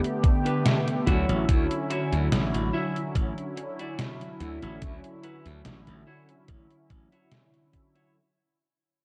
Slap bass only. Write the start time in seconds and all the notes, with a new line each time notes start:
1.07 D2
1.29 A1
1.49 D2
2.12 D2
2.32 A1
2.54 A1
3.15 A1
4.40 D2
4.62 A1
4.82 D2
5.46 D2
5.65 A1
5.88 A1
6.49 A1
6.90 A1